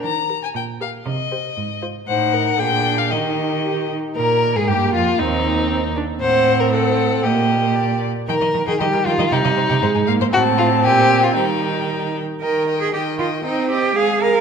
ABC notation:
X:1
M:2/4
L:1/16
Q:1/4=117
K:Eb
V:1 name="Violin"
b3 a g2 f2 | e6 z2 | ^f4 g3 =f | e6 z2 |
B3 A G2 F2 | E6 z2 | ^f4 f4 | e4 d2 z2 |
g e B g e B g e | g e c g c A f c | =a4 _a4 | g6 z2 |
g2 g2 g2 g2 | g2 g2 a2 a2 |]
V:2 name="Violin"
z2 B2 z2 B2 | z2 c2 z2 c2 | c2 B2 A4 | G6 z2 |
B3 A G2 F2 | E6 z2 | c3 B =A4 | G6 z2 |
B3 A G2 F2 | E6 z2 | ^F2 =F2 G3 F | E6 z2 |
e2 e2 e2 e2 | e2 e2 f2 f2 |]
V:3 name="Viola"
z2 G2 z2 G2 | z2 G2 z2 F2 | E4 D4 | E4 G2 E2 |
z4 B,4 | C4 C2 D2 | C8 | B,6 z2 |
z4 G,4 | G,4 A,2 B,2 | C8 | G,6 z2 |
E,4 E,4 | C4 A,4 |]
V:4 name="Cello" clef=bass
E,3 z B,,3 z | C,3 z A,,3 z | =A,,4 B,,4 | E,6 z2 |
B,,3 A,, G,,2 F,,2 | E,,6 z2 | =A,,8 | B,,6 z2 |
E, E, E, E, E, E, E, E, | C, C, C, C, A,, A,, A,, A,, | =A,,4 B,,4 | E,6 z2 |
B3 A G2 F2 | E2 G2 A2 B2 |]